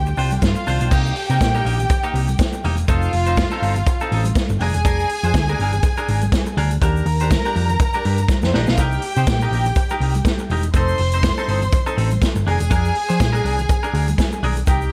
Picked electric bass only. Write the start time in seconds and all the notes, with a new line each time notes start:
Already playing: D2
0.17 C2
0.42 G2
0.67 C2
0.81 B1
0.92 C2
1.30 C3
1.41 A#2
1.65 A#1
2.14 C2
2.64 E1
2.88 F1
3.13 F1
3.62 G1
4.12 A1
4.49 G1
4.60 F1
4.75 E1
4.85 F1
5.23 F2
5.35 D2
5.59 G1
6.09 G#1
6.57 D2
6.82 D#2
7.06 D#2
7.56 F2
8.05 G2
8.43 F2
8.54 A#1
8.68 B1
8.78 C2
9.17 C3
9.27 A#2
9.51 A#1
10.00 C2
10.50 E1
10.74 F1
10.99 F1
11.48 G1
11.97 A1
12.35 G1
12.47 F1
12.60 E1
12.71 F2
13.10 F3
13.20 A#2
13.44 C2
13.93 D2
14.43 B1
14.68 C2